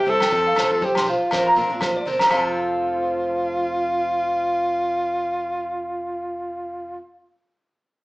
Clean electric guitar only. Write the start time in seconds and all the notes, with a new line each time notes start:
0.08 C5
0.21 G5
0.33 muted clean electric guitar stroke
0.47 F5
0.59 C5
0.83 C5
0.97 C6
1.07 C5
1.33 C5
1.47 A#5
1.82 C5
1.96 D5
2.07 C5
2.20 A#5
2.25 C5
2.31 F5
2.37 A5